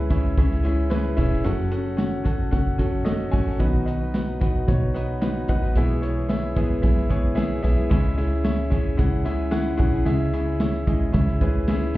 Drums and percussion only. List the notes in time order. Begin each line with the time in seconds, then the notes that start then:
0.11 kick, closed hi-hat
0.37 kick, closed hi-hat
0.51 snare
0.65 closed hi-hat
0.91 snare, closed hi-hat, tambourine
1.18 kick, closed hi-hat
1.44 closed hi-hat
1.72 closed hi-hat
1.98 snare, closed hi-hat, tambourine
2.26 kick, closed hi-hat
2.53 kick, closed hi-hat
2.79 kick, closed hi-hat
3.06 snare, closed hi-hat, tambourine
3.33 kick, open hi-hat
3.60 kick, closed hi-hat
3.88 closed hi-hat
4.14 snare, closed hi-hat, tambourine
4.41 kick, closed hi-hat
4.68 kick, closed hi-hat
4.96 closed hi-hat
5.22 snare, closed hi-hat, tambourine
5.48 kick, closed hi-hat
5.76 closed hi-hat
6.03 closed hi-hat
6.29 snare, closed hi-hat, tambourine
6.57 kick, closed hi-hat
6.83 kick, closed hi-hat
6.97 snare
7.11 kick, closed hi-hat
7.37 snare, closed hi-hat, tambourine
7.64 closed hi-hat
7.91 kick, closed hi-hat
8.19 closed hi-hat
8.45 snare, closed hi-hat, tambourine
8.72 kick, closed hi-hat
8.99 kick, closed hi-hat
9.26 closed hi-hat
9.52 snare, closed hi-hat, tambourine
9.78 kick, closed hi-hat
10.06 closed hi-hat
10.34 closed hi-hat
10.60 snare, closed hi-hat, tambourine
10.87 kick, closed hi-hat
11.14 kick, closed hi-hat
11.28 snare
11.41 kick, closed hi-hat
11.67 snare, closed hi-hat, tambourine